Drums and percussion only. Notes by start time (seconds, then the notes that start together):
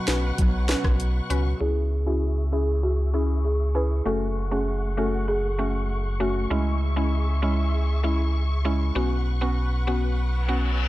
0.08 snare, closed hi-hat
0.38 kick, closed hi-hat
0.69 snare, closed hi-hat
0.84 kick, cross-stick
1.00 closed hi-hat
1.30 closed hi-hat